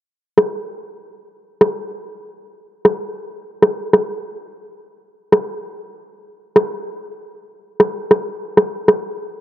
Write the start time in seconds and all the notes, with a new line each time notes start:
0.38 cross-stick
1.61 cross-stick
2.85 cross-stick
3.62 cross-stick
3.93 cross-stick
5.32 cross-stick
6.56 cross-stick
7.80 cross-stick
8.11 cross-stick
8.57 cross-stick
8.88 cross-stick